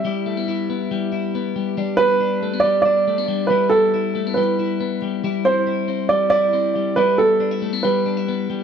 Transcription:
X:1
M:4/4
L:1/16
Q:1/4=138
K:Em
V:1 name="Upright piano"
e12 z4 | z2 B6 d2 d6 | B2 A6 B6 z2 | z2 c6 d2 d6 |
B2 A6 B6 z2 |]
V:2 name="Clean electric guitar"
[G,E]2 A, B, E2 B,2 G,2 E2 B,2 G,2 | [G,D]2 B,2 D2 A, B, G,2 D2 A, B, G,2 | [G,E]2 B,2 E2 A, B, G,2 E2 B,2 G,2 | [G,E]2 C2 E2 C2 G,2 E2 C2 G,2 |
[G,E]2 B,2 D E A, B, G,2 D E B,2 G,2 |]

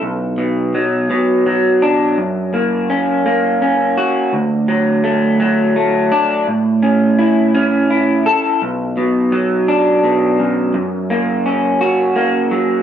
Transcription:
X:1
M:6/8
L:1/8
Q:3/8=56
K:Bm
V:1 name="Clean electric guitar"
B,,, B,, F, B,, F, D | F,, ^A, C A, C F | D,, F, A, F, A, D | A,, C E C E A |
B,,, B,, F, D B,, F,, | F,, ^A, C F A, F, |]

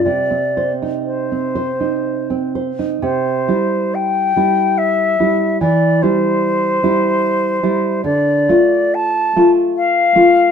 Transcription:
X:1
M:3/4
L:1/16
Q:1/4=72
K:Cm
V:1 name="Flute"
d2 z2 c6 z2 | [K:C] c4 g4 e4 | d2 c8- c2 | d4 a2 z2 f4 |]
V:2 name="Nylon-string guitar"
C, C c E2 C c E2 C c E | [K:C] C,2 [G,E]4 [G,E]4 [G,E]2 | E,2 [G,E]4 [G,E]4 [G,E]2 | D,2 [A,F]4 [A,F]4 [A,F]2 |]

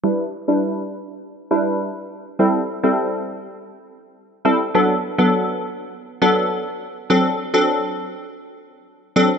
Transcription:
X:1
M:4/4
L:1/16
Q:1/4=102
K:Em
V:1 name="Synth stab"
[G,DEB] z2 [G,DEB]3 z4 [G,DEB]3 z3 | [G,CEA] z2 [G,CEA]4 z6 z [G,CEA] z | [F,B,DA] z2 [F,B,DA]3 z4 [F,B,DA]3 z3 | [F,CDA] z2 [F,CDA]4 z6 z [F,CDA] z |]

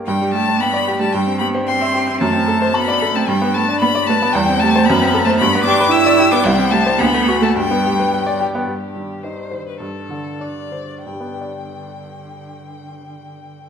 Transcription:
X:1
M:2/4
L:1/16
Q:1/4=111
K:G
V:1 name="Violin"
g2 a2 b3 a | g2 b2 c'4 | a4 b3 a | g2 a2 b2 a2 |
g2 a2 b3 a | b2 d'2 e'3 d' | g2 a2 b3 a | g6 z2 |
G4 c3 B | A4 d4 | g8- | g8 |]
V:2 name="Grand piano"
G,, G, G D g d G G, | G,, C G c g e G C | F,, C A c a d A C | G,, B, B D b d B B, |
E,, C G c F,, C A c | G,, B, G B g d G B, | C,, C G c D,, A, F A | G,, B, G B g d G B, |
G,,2 G,2 _E2 c2 | G,,2 D,2 D2 c2 | [G,,G,B,DGd]8- | [G,,G,B,DGd]8 |]
V:3 name="Cello"
G,2 A,2 B,3 A, | G,2 B,2 C4 | A,4 B,3 A, | G,2 A,2 B,2 A,2 |
G,2 A,2 B,3 A, | B,2 D2 E3 D | G,2 A,2 B,3 A, | G,6 z2 |
z2 _E,2 z2 E,2 | z2 D,2 z2 D,2 | D,8- | D,8 |]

